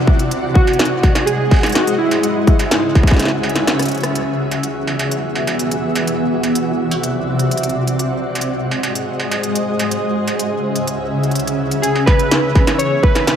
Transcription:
0.00 0.29 C3 medium
0.00 0.29 C4 medium
0.00 0.27 E4 loud
0.00 4.14 F#4 medium
0.00 0.29 D5 medium
0.00 4.14 F#5 medium
0.07 kick loud
0.19 closed hi-hat medium
0.31 2.21 G#3 medium
0.31 2.21 G#4 medium
0.31 2.21 C5 medium
0.31 2.21 D#5 loud
0.31 closed hi-hat medium
0.54 1.29 F#4 loud
0.54 kick loud
0.67 closed hi-hat soft
0.67 struck metal medium
0.73 closed hi-hat soft
0.79 snare loud
0.79 closed hi-hat medium
0.85 closed hi-hat soft
1.03 kick loud
1.03 struck metal medium
1.03 shaker medium
1.15 snare medium
1.15 closed hi-hat medium
1.15 struck metal medium
1.26 1.76 G#4 loud
1.26 closed hi-hat medium
1.51 kick medium
1.51 struck metal medium
1.54 struck metal soft
1.56 struck metal soft
1.59 struck metal soft
1.61 snare medium
1.61 closed hi-hat soft
1.61 struck metal soft
1.63 closed hi-hat soft
1.63 struck metal medium
1.69 closed hi-hat soft
1.72 2.00 F#4 loud
1.72 snare loud
1.72 closed hi-hat soft
1.75 closed hi-hat medium
1.87 closed hi-hat medium
1.98 3.63 E4 medium
2.11 closed hi-hat medium
2.11 struck metal medium
2.23 4.13 C#3 medium
2.23 4.14 C#4 medium
2.23 4.14 G#4 medium
2.23 4.14 E5 loud
2.23 closed hi-hat medium
2.47 kick loud
2.47 closed hi-hat soft
2.59 closed hi-hat medium
2.59 struck metal medium
2.71 snare loud
2.71 closed hi-hat medium
2.95 kick medium
2.95 struck metal medium
3.03 kick medium
3.07 snare soft
3.07 closed hi-hat medium
3.07 struck metal medium
3.10 kick medium
3.10 snare soft
3.13 snare soft
3.16 snare soft
3.19 snare soft
3.19 closed hi-hat medium
3.22 snare soft
3.25 snare soft
3.28 snare soft
3.43 struck metal medium
3.49 closed hi-hat soft
3.56 snare medium
3.56 closed hi-hat medium
3.67 cross-stick medium
3.67 snare loud
3.67 closed hi-hat medium
3.79 cross-stick medium
3.79 closed hi-hat medium
3.82 closed hi-hat medium
3.85 closed hi-hat soft
3.88 closed hi-hat soft
3.91 closed hi-hat soft
3.95 closed hi-hat soft
3.98 closed hi-hat soft
4.00 cross-stick medium
4.00 closed hi-hat soft
4.03 closed hi-hat medium
4.15 6.05 E3 medium
4.15 6.05 B3 medium
4.15 11.84 F#4 medium
4.15 6.05 G#4 medium
4.15 7.95 E5 medium
4.15 11.84 F#5 medium
4.15 closed hi-hat medium
4.51 closed hi-hat soft
4.51 struck metal soft
4.63 closed hi-hat medium
4.87 struck metal medium
4.99 closed hi-hat soft
4.99 struck metal medium
5.11 closed hi-hat medium
5.35 struck metal medium
5.47 closed hi-hat medium
5.47 struck metal medium
5.59 closed hi-hat medium
5.71 closed hi-hat medium
5.96 closed hi-hat soft
5.96 struck metal medium
6.07 7.97 C3 medium
6.07 7.97 C4 medium
6.07 7.97 D5 medium
6.07 closed hi-hat medium
6.43 closed hi-hat soft
6.43 struck metal soft
6.55 closed hi-hat medium
6.91 closed hi-hat soft
6.91 struck metal medium
7.03 closed hi-hat medium
7.39 closed hi-hat soft
7.51 closed hi-hat medium
7.57 closed hi-hat soft
7.63 closed hi-hat medium
7.69 closed hi-hat soft
7.87 closed hi-hat medium
7.99 9.89 G#3 medium
7.99 11.80 G#4 medium
7.99 9.89 C5 medium
7.99 9.90 D#5 medium
7.99 closed hi-hat medium
8.35 closed hi-hat soft
8.35 struck metal soft
8.41 closed hi-hat medium
8.71 struck metal medium
8.83 closed hi-hat soft
8.83 struck metal medium
8.95 closed hi-hat medium
9.20 struck metal medium
9.31 closed hi-hat soft
9.31 struck metal medium
9.43 closed hi-hat medium
9.55 closed hi-hat medium
9.79 closed hi-hat medium
9.79 struck metal medium
9.91 11.81 C#3 medium
9.91 11.81 C#4 medium
9.91 11.82 E5 loud
9.91 closed hi-hat medium
10.28 closed hi-hat soft
10.28 struck metal soft
10.39 closed hi-hat medium
10.76 closed hi-hat soft
10.88 closed hi-hat medium
11.23 closed hi-hat soft
11.31 closed hi-hat soft
11.35 closed hi-hat medium
11.39 closed hi-hat soft
11.47 closed hi-hat medium
11.71 closed hi-hat soft
11.82 13.36 E3 medium
11.82 13.36 B3 medium
11.82 12.05 G#4 medium
11.82 13.36 G#4 medium
11.82 13.36 E5 loud
11.82 closed hi-hat medium
11.96 struck metal soft
12.06 12.81 B4 loud
12.06 kick loud
12.06 struck metal medium
12.19 closed hi-hat medium
12.31 snare loud
12.31 closed hi-hat medium
12.55 kick loud
12.55 struck metal medium
12.67 snare medium
12.67 closed hi-hat medium
12.67 struck metal medium
12.78 13.04 C#5 loud
12.78 closed hi-hat medium
13.03 13.36 B4 loud
13.03 kick loud
13.15 snare medium
13.15 closed hi-hat medium
13.15 struck metal medium
13.27 snare loud
13.27 closed hi-hat medium

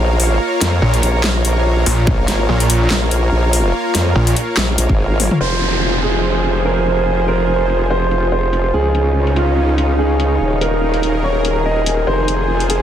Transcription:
0.00 0.39 A#1 loud
0.00 5.37 A#3 medium
0.00 9.41 F4 medium
0.00 5.37 A#4 medium
0.00 5.36 C#5 medium
0.00 5.40 C#5 medium
0.00 0.40 D#5 medium
0.00 5.37 F5 medium
0.00 6.16 A#5 medium
0.20 open hi-hat loud
0.61 0.81 F2 loud
0.61 snare medium
0.61 closed hi-hat medium
0.82 1.01 A#1 loud
0.94 closed hi-hat soft
1.03 1.85 A#1 loud
1.03 closed hi-hat medium
1.24 snare loud
1.24 clap medium
1.45 closed hi-hat medium
1.86 2.06 A#1 loud
1.86 open hi-hat loud
2.07 2.27 A#1 loud
2.07 kick loud
2.28 2.47 G#1 loud
2.28 snare medium
2.28 closed hi-hat medium
2.49 2.89 A#1 medium
2.60 closed hi-hat soft
2.70 closed hi-hat medium
2.91 3.31 A#1 loud
2.91 snare loud
2.91 clap medium
3.11 closed hi-hat medium
3.32 3.72 A#1 loud
3.53 open hi-hat loud
3.95 4.14 F2 loud
3.95 snare medium
3.95 closed hi-hat medium
4.16 4.35 A#1 loud
4.27 closed hi-hat soft
4.36 closed hi-hat medium
4.57 4.77 A#1 loud
4.57 snare loud
4.57 clap medium
4.78 4.88 A#1 loud
4.78 closed hi-hat medium
4.89 5.29 G#1 loud
4.89 kick medium
5.20 open hi-hat loud
5.20 high tom medium
5.31 mid tom medium
5.41 8.72 F1 medium
5.41 8.71 F3 medium
5.41 10.37 F4 medium
5.41 8.71 G#4 medium
5.41 8.71 C5 medium
5.41 5.96 C5 medium
5.41 downlifter medium
5.61 8.74 C5 medium
5.61 closed hi-hat medium
5.76 9.29 G#5 medium
5.94 closed hi-hat soft
6.03 6.58 G#4 medium
6.03 closed hi-hat medium
6.45 closed hi-hat medium
6.65 7.20 A#4 medium
6.86 closed hi-hat medium
7.28 7.83 A#4 medium
7.28 closed hi-hat medium
7.60 closed hi-hat soft
7.70 closed hi-hat medium
7.90 8.24 C5 medium
8.11 closed hi-hat medium
8.32 8.66 C5 medium
8.53 closed hi-hat medium
8.74 10.39 C#2 medium
8.74 10.39 C#3 medium
8.74 10.39 C#4 medium
8.74 12.04 D#4 medium
8.74 12.82 D#4 medium
8.74 9.29 G#4 medium
8.88 11.08 C#5 medium
8.95 closed hi-hat medium
9.22 11.07 F5 medium
9.27 closed hi-hat soft
9.36 9.91 F4 medium
9.36 closed hi-hat medium
9.78 closed hi-hat medium
9.99 10.54 G#4 medium
10.20 closed hi-hat medium
10.41 12.05 D#1 medium
10.41 12.06 D#3 medium
10.41 12.82 G#4 medium
10.41 12.06 A#4 medium
10.52 12.82 A#4 medium
10.61 11.16 A#4 medium
10.61 closed hi-hat medium
10.94 closed hi-hat soft
11.03 closed hi-hat medium
11.16 12.82 G#5 medium
11.24 11.57 C#5 medium
11.45 closed hi-hat medium
11.66 11.99 D#5 medium
11.86 closed hi-hat medium
12.07 12.82 F1 medium
12.07 12.82 F3 medium
12.07 12.82 F4 medium
12.07 12.62 C5 medium
12.07 12.82 C5 medium
12.28 closed hi-hat medium
12.39 12.82 C5 medium
12.60 closed hi-hat soft
12.70 12.82 G#4 medium
12.70 closed hi-hat medium

